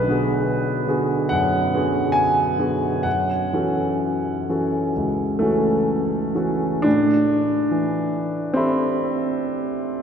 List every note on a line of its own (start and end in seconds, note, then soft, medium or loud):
0.00 3.08 B1 soft
0.00 1.31 B4 medium
0.08 0.84 D3 soft
0.08 0.84 B3 soft
0.08 0.84 F#4 soft
0.08 0.85 G#4 soft
0.87 1.27 D3 soft
0.87 1.28 B3 soft
0.87 1.28 F#4 soft
0.87 1.28 G#4 soft
1.29 1.72 F#2 soft
1.29 2.14 F#5 medium
1.74 2.55 D3 soft
1.74 2.55 B3 soft
1.74 2.55 F#4 soft
1.74 2.55 G#4 soft
2.12 3.04 G#5 medium
2.59 3.01 D3 soft
2.59 3.01 B3 soft
2.59 3.02 F#4 soft
2.59 3.02 G#4 soft
3.03 3.52 F#2 soft
3.03 6.34 F#5 medium
3.53 4.46 E3 soft
3.53 4.46 C#4 soft
3.53 4.46 F#4 soft
3.53 4.46 A4 soft
4.49 4.92 E3 soft
4.49 4.92 C#4 soft
4.49 4.92 F#4 soft
4.49 4.92 A4 soft
4.96 5.39 C#2 soft
5.39 6.31 E3 soft
5.39 6.84 A3 medium
5.39 6.31 C#4 soft
5.39 6.32 F#4 soft
5.39 6.32 A4 soft
6.35 6.81 E3 soft
6.35 6.81 C#4 soft
6.35 6.81 F#4 soft
6.35 6.81 A4 soft
6.82 10.02 A2 soft
6.82 8.55 D4 medium
7.71 9.08 E3 soft
8.54 10.02 C4 medium
8.54 10.02 G4 soft
8.54 10.02 A4 soft
8.54 10.02 E5 soft
8.54 10.02 B5 soft